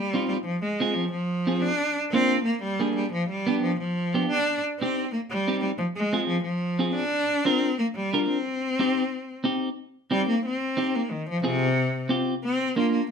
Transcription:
0.00 0.27 G3 medium
0.14 0.37 C4 medium
0.14 0.37 D#4 medium
0.14 0.38 F4 medium
0.28 0.36 G3 medium
0.45 0.61 F3 medium
0.61 0.95 G#3 medium
0.80 1.04 C4 medium
0.80 1.04 F4 medium
0.80 1.04 G#4 medium
0.94 1.11 F3 medium
1.11 1.63 F3 medium
1.47 1.71 C4 medium
1.47 1.71 F4 medium
1.47 1.71 G#4 medium
1.62 1.96 D4 medium
2.11 2.37 A#3 medium
2.11 2.44 C4 loud
2.11 2.37 D4 medium
2.11 2.37 F4 medium
2.45 2.61 A#3 medium
2.63 2.94 G3 medium
2.80 3.04 A#3 medium
2.80 3.04 D4 medium
2.80 3.04 G#4 medium
2.96 3.12 G3 medium
3.13 3.29 F3 medium
3.30 3.61 G3 medium
3.47 3.70 B3 medium
3.47 3.71 D4 medium
3.47 3.71 G4 medium
3.63 3.79 F3 medium
3.79 4.27 F3 medium
4.14 4.38 B3 medium
4.14 4.38 D4 medium
4.14 4.38 G4 medium
4.29 4.61 D4 loud
4.79 5.11 C4 medium
4.79 5.05 C4 medium
4.79 5.05 D#4 medium
4.79 5.05 G4 medium
5.13 5.20 A#3 medium
5.29 5.61 G3 medium
5.48 5.71 C4 medium
5.48 5.71 D#4 medium
5.48 5.71 G4 medium
5.62 5.70 G3 medium
5.78 5.86 F3 medium
5.96 6.27 G#3 medium
6.13 6.37 C4 medium
6.13 6.37 F4 medium
6.13 6.37 G#4 medium
6.28 6.43 F3 medium
6.43 6.91 F3 medium
6.79 7.03 C4 medium
6.79 7.03 F4 medium
6.79 7.04 G#4 medium
6.94 7.46 D4 loud
7.45 7.78 C4 medium
7.45 7.69 D4 medium
7.45 7.70 F4 medium
7.45 7.70 A#4 medium
7.79 7.86 A#3 medium
7.96 8.27 G3 medium
8.13 8.37 D4 medium
8.13 8.37 F4 medium
8.13 8.37 A#4 medium
8.29 9.42 C4 medium
8.79 9.03 C4 medium
8.79 9.03 D#4 medium
8.79 9.03 G4 medium
9.44 9.68 C4 medium
9.44 9.68 D#4 medium
9.44 9.69 G4 medium
10.11 10.28 G3 loud
10.11 10.35 C4 medium
10.11 10.35 D#4 medium
10.11 10.35 G4 medium
10.29 10.45 A#3 medium
10.46 10.97 C4 medium
10.77 11.01 C4 medium
10.77 11.01 D#4 medium
10.77 11.01 G4 medium
10.95 11.13 A#3 medium
11.11 11.28 D#3 medium
11.29 11.43 F3 medium
11.44 12.09 C3 loud
11.44 11.68 C4 medium
11.44 11.68 F4 medium
11.44 11.68 G#4 medium
12.09 12.34 C4 medium
12.09 12.34 F4 medium
12.09 12.34 G4 medium
12.44 12.77 C4 medium
12.76 13.00 A#3 medium
12.76 12.92 A#3 medium
12.76 13.01 D4 medium
12.76 13.01 F4 medium
12.92 13.10 A#3 medium

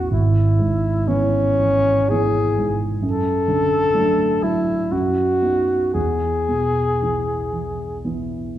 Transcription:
0.00 0.11 E2 soft
0.00 0.14 E3 soft
0.00 0.14 C#4 soft
0.00 0.14 E4 soft
0.00 0.10 F#4 medium
0.11 2.99 G#1 soft
0.11 1.09 E4 medium
0.59 1.37 G#2 soft
1.06 1.54 E3 soft
1.06 1.55 B3 soft
1.06 2.11 C#4 medium
1.06 1.55 E4 soft
1.58 2.09 E3 soft
2.10 2.54 E3 soft
2.10 2.54 B3 soft
2.10 2.54 E4 soft
2.10 2.77 G#4 medium
2.57 3.03 G#2 soft
3.02 4.87 F#2 soft
3.02 4.45 A4 medium
3.48 4.24 D3 soft
3.94 4.39 F#3 soft
3.94 4.39 A3 soft
3.94 4.39 D4 soft
4.43 4.92 F#3 soft
4.43 4.94 E4 medium
4.91 5.91 F#2 soft
4.91 5.93 F#4 soft
5.42 5.91 B3 soft
5.42 5.91 D#4 soft
5.94 8.58 E2 soft
5.94 7.99 G#4 medium
6.48 7.32 B2 soft
7.02 7.49 E3 soft
7.02 7.49 B3 soft
7.02 7.49 E4 soft
7.53 8.03 E3 soft
8.04 8.52 E3 soft
8.04 8.52 B3 soft
8.04 8.53 E4 soft

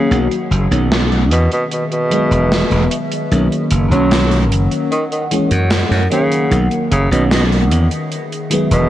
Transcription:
0.00 0.20 C#3 medium
0.00 4.88 D#3 medium
0.00 1.27 A#4 medium
0.00 1.27 F#5 medium
0.11 0.27 B1 medium
0.11 0.66 D#3 medium
0.11 0.67 F#3 medium
0.11 0.67 A#3 medium
0.11 0.67 F#4 medium
0.11 closed hi-hat medium
0.31 closed hi-hat soft
0.51 0.67 F#1 medium
0.51 closed hi-hat medium
0.71 1.31 B1 medium
0.71 1.29 D#3 medium
0.71 1.29 F#3 medium
0.71 1.29 A#3 medium
0.71 1.30 C#4 medium
0.71 closed hi-hat medium
0.92 snare loud
0.92 closed hi-hat medium
1.12 closed hi-hat soft
1.31 1.47 E2 medium
1.31 1.48 B2 medium
1.31 3.30 G#4 medium
1.31 3.30 E5 medium
1.31 closed hi-hat medium
1.52 1.65 B2 medium
1.52 closed hi-hat medium
1.71 1.85 B2 medium
1.71 closed hi-hat medium
1.92 3.04 B2 medium
1.92 closed hi-hat soft
2.10 3.26 D#3 medium
2.10 3.27 F#3 medium
2.10 3.27 G#3 medium
2.10 3.28 B3 medium
2.10 closed hi-hat medium
2.31 2.62 E1 medium
2.31 closed hi-hat medium
2.52 snare loud
2.52 closed hi-hat medium
2.71 2.87 E1 medium
2.71 closed hi-hat soft
2.91 closed hi-hat medium
3.12 closed hi-hat medium
3.31 3.47 B1 medium
3.31 3.87 D#3 medium
3.31 3.87 F#3 medium
3.31 3.87 A#3 medium
3.31 3.87 C#4 medium
3.31 7.68 A#4 medium
3.31 7.68 F#5 medium
3.31 closed hi-hat medium
3.52 closed hi-hat soft
3.71 3.87 F#1 medium
3.71 closed hi-hat medium
3.90 4.51 B1 medium
3.90 4.89 D#3 medium
3.90 4.89 F#3 medium
3.90 4.40 F#3 medium
3.90 4.89 A#3 medium
3.90 4.90 C#4 loud
3.90 closed hi-hat medium
4.11 snare loud
4.11 closed hi-hat medium
4.31 closed hi-hat soft
4.51 4.67 F#1 medium
4.51 closed hi-hat medium
4.71 closed hi-hat medium
4.92 5.04 D#3 medium
4.92 closed hi-hat medium
5.12 5.24 D#3 medium
5.12 closed hi-hat soft
5.31 5.53 E3 medium
5.31 5.53 G#3 medium
5.31 5.53 A#3 medium
5.31 5.53 C#4 medium
5.31 closed hi-hat medium
5.51 5.82 F#2 medium
5.51 closed hi-hat medium
5.70 snare loud
5.70 closed hi-hat medium
5.91 6.07 F#2 medium
5.91 closed hi-hat soft
6.10 6.60 C#3 medium
6.10 6.46 D#3 medium
6.10 8.89 D#3 medium
6.10 6.46 F#3 medium
6.10 6.47 A#3 medium
6.10 6.47 C#4 loud
6.10 closed hi-hat medium
6.32 closed hi-hat medium
6.50 6.67 B1 medium
6.50 7.06 D#3 medium
6.50 7.06 F#3 medium
6.50 7.07 A#3 medium
6.50 7.07 F#4 medium
6.50 closed hi-hat medium
6.71 closed hi-hat soft
6.91 7.07 F#1 medium
6.91 7.08 C#3 medium
6.91 closed hi-hat medium
7.11 7.71 B1 medium
7.11 7.24 B2 medium
7.11 7.69 D#3 medium
7.11 7.69 F#3 medium
7.11 7.69 A#3 medium
7.11 7.70 C#4 medium
7.11 closed hi-hat medium
7.31 7.45 B2 medium
7.31 snare loud
7.31 closed hi-hat medium
7.52 closed hi-hat soft
7.71 7.87 E2 medium
7.71 8.89 G#4 medium
7.71 8.89 E5 medium
7.71 closed hi-hat medium
7.91 closed hi-hat medium
8.12 closed hi-hat medium
8.32 closed hi-hat soft
8.50 8.89 D#3 medium
8.50 8.89 F#3 medium
8.50 8.89 G#3 medium
8.50 8.89 B3 medium
8.50 closed hi-hat medium
8.71 8.89 E1 medium
8.71 8.89 B2 medium
8.71 closed hi-hat medium

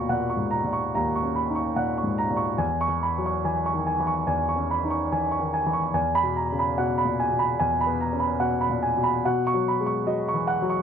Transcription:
0.00 0.90 D#2 soft
0.00 0.10 A#2 soft
0.00 0.10 B2 soft
0.00 0.51 A#5 soft
0.00 1.36 B5 soft
0.00 0.30 C#6 medium
0.09 0.55 A#2 soft
0.09 0.44 F#5 soft
0.30 0.65 C#6 soft
0.37 0.66 G#2 soft
0.51 0.86 A#5 soft
0.64 1.10 A#2 soft
0.73 1.07 C#6 soft
0.95 2.58 D#2 soft
0.95 1.28 A#5 soft
1.15 1.49 C#6 soft
1.23 1.67 C#4 soft
1.36 1.57 B5 soft
1.49 1.78 D#4 soft
1.55 1.90 C#6 soft
1.76 2.22 A#2 soft
1.76 2.11 F#5 soft
1.98 2.32 C#6 soft
2.04 2.33 G#2 soft
2.18 2.53 A#5 soft
2.30 2.60 A#2 soft
2.37 2.60 C#6 soft
2.58 4.24 E2 soft
2.58 2.94 G#5 soft
2.81 3.16 C#6 medium
2.88 3.34 E3 soft
3.03 3.25 B5 soft
3.18 3.46 F#3 soft
3.26 3.59 C#6 soft
3.44 3.90 E3 soft
3.44 3.79 G#5 soft
3.66 4.00 C#6 soft
3.73 4.02 D#3 soft
3.87 4.21 G#5 soft
4.00 4.46 E3 soft
4.07 4.42 C#6 soft
4.27 5.91 E2 soft
4.27 4.62 G#5 soft
4.49 4.84 C#6 soft
4.56 5.02 C#4 soft
4.71 4.92 B5 soft
4.84 5.13 D#4 soft
4.90 5.25 C#6 soft
5.12 5.57 E3 soft
5.12 5.46 G#5 soft
5.32 5.66 C#6 soft
5.39 5.68 D#3 soft
5.54 5.87 G#5 soft
5.66 5.95 E3 soft
5.73 5.95 C#6 soft
5.94 7.55 E2 medium
5.94 6.28 G#5 medium
6.15 6.49 B5 medium
6.23 6.67 B2 soft
6.36 6.57 A#5 soft
6.52 6.79 C#3 soft
6.59 6.91 B5 soft
6.78 7.22 B2 soft
6.78 7.11 F#5 soft
6.98 7.31 B5 soft
7.05 7.33 A#2 soft
7.20 7.53 G#5 soft
7.31 7.76 B2 soft
7.39 7.72 B5 soft
7.60 9.22 E2 soft
7.60 7.93 G#5 medium
7.81 8.14 B5 soft
7.87 8.31 B3 soft
8.01 8.22 A#5 soft
8.13 8.42 C#4 soft
8.20 8.54 B5 soft
8.40 8.86 B2 soft
8.40 8.75 F#5 medium
8.61 8.96 B5 soft
8.70 8.98 A#2 soft
8.83 9.17 G#5 medium
8.97 9.24 B2 soft
9.04 9.25 B5 soft
9.25 10.82 B2 medium
9.25 9.59 F#5 medium
9.47 9.79 C#6 medium
9.54 9.97 F#3 soft
9.68 9.88 B5 soft
9.80 10.08 G#3 soft
9.86 10.19 C#6 soft
10.07 10.50 F#3 soft
10.07 10.40 D#5 soft
10.28 10.61 C#6 soft
10.34 10.61 E3 soft
10.47 10.80 F#5 medium
10.62 10.82 F#3 soft
10.70 10.82 C#6 medium

